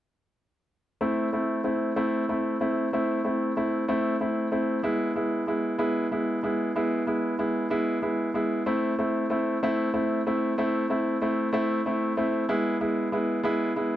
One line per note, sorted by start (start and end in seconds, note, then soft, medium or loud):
1.01 1.27 A3 medium
1.01 1.27 C4 soft
1.01 1.28 E4 medium
1.33 1.59 A3 soft
1.33 1.59 C4 soft
1.33 1.60 E4 soft
1.64 1.91 A3 soft
1.64 1.91 C4 soft
1.64 1.91 E4 medium
1.96 2.23 A3 medium
1.96 2.23 C4 medium
1.96 2.23 E4 medium
2.29 2.55 A3 soft
2.29 2.55 C4 soft
2.29 2.55 E4 medium
2.61 2.87 A3 soft
2.61 2.87 C4 soft
2.61 2.87 E4 medium
2.93 3.19 A3 medium
2.93 3.19 C4 medium
2.93 3.19 E4 medium
3.24 3.51 A3 soft
3.24 3.51 C4 soft
3.24 3.51 E4 soft
3.57 3.83 A3 soft
3.57 3.83 C4 soft
3.57 3.83 E4 medium
3.88 4.15 A3 medium
3.88 4.15 C4 medium
3.88 4.15 E4 medium
4.20 4.47 A3 soft
4.20 4.47 C4 soft
4.20 4.47 E4 medium
4.52 4.78 A3 soft
4.52 4.78 C4 soft
4.52 4.78 E4 medium
4.83 5.10 G#3 medium
4.83 5.10 B3 medium
4.83 5.10 E4 medium
5.15 5.42 G#3 soft
5.15 5.42 B3 soft
5.15 5.42 E4 medium
5.47 5.74 G#3 soft
5.47 5.74 B3 soft
5.47 5.74 E4 medium
5.78 6.05 G#3 medium
5.78 6.06 B3 medium
5.78 6.05 E4 medium
6.11 6.38 G#3 soft
6.11 6.38 B3 soft
6.11 6.38 E4 medium
6.43 6.69 G#3 medium
6.43 6.70 B3 soft
6.43 6.70 E4 medium
6.76 7.02 G#3 medium
6.76 7.02 B3 medium
6.76 7.02 E4 medium
7.07 7.33 G#3 soft
7.07 7.33 B3 soft
7.07 7.33 E4 medium
7.39 7.65 G#3 soft
7.39 7.65 B3 soft
7.39 7.65 E4 medium
7.70 7.97 G#3 medium
7.70 7.97 B3 medium
7.70 7.97 E4 medium
8.02 8.29 G#3 medium
8.02 8.29 B3 soft
8.02 8.29 E4 medium
8.34 8.61 G#3 medium
8.34 8.61 B3 soft
8.34 8.61 E4 medium
8.66 8.92 A3 medium
8.66 8.93 C4 medium
8.66 8.93 E4 medium
8.99 9.25 A3 medium
8.99 9.25 C4 soft
8.99 9.25 E4 medium
9.30 9.56 A3 medium
9.30 9.56 C4 soft
9.30 9.57 E4 medium
9.63 9.89 A3 medium
9.63 9.89 C4 medium
9.63 9.89 E4 medium
9.94 10.20 A3 medium
9.94 10.20 C4 medium
9.94 10.20 E4 medium
10.27 10.52 A3 medium
10.27 10.52 C4 soft
10.27 10.53 E4 medium
10.58 10.84 A3 medium
10.58 10.84 C4 medium
10.58 10.84 E4 medium
10.90 11.16 A3 medium
10.90 11.16 C4 soft
10.90 11.16 E4 medium
11.22 11.48 A3 medium
11.22 11.48 C4 medium
11.22 11.48 E4 medium
11.53 11.79 A3 medium
11.53 11.79 C4 medium
11.53 11.79 E4 medium
11.86 12.12 A3 medium
11.86 12.12 C4 medium
11.86 12.12 E4 medium
12.17 12.43 A3 medium
12.17 12.43 C4 medium
12.17 12.43 E4 medium
12.49 12.75 G#3 medium
12.49 12.75 B3 medium
12.49 12.75 E4 medium
12.81 13.07 G#3 medium
12.81 13.07 B3 soft
12.81 13.07 E4 medium
13.12 13.38 G#3 medium
13.12 13.38 B3 medium
13.12 13.39 E4 medium
13.43 13.70 G#3 medium
13.43 13.70 B3 medium
13.43 13.71 E4 medium
13.76 13.96 G#3 medium
13.76 13.96 B3 medium
13.76 13.96 E4 medium